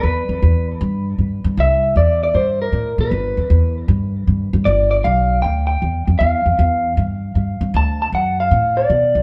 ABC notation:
X:1
M:4/4
L:1/8
Q:"Swing" 1/4=156
K:Gmix
V:1 name="Clean electric guitar"
B3 z4 z | e2 d d c _B2 =B- | B3 z4 z | d d f2 g g2 z |
f4 z4 | a a ^f =f2 d3 |]
V:2 name="Upright bass" clef=bass
E,, F,, E,,2 G,,2 G,, G,, | C,,2 E,,2 G,,2 A,, _B,, | G,,, F,, E,,2 G,,2 G,, G,, | G,,,2 B,,,2 D,,2 E,, F,, |
E,, F,, E,,2 G,,2 G,, G,, | D,,2 ^F,,2 A,,2 B,, B,,, |]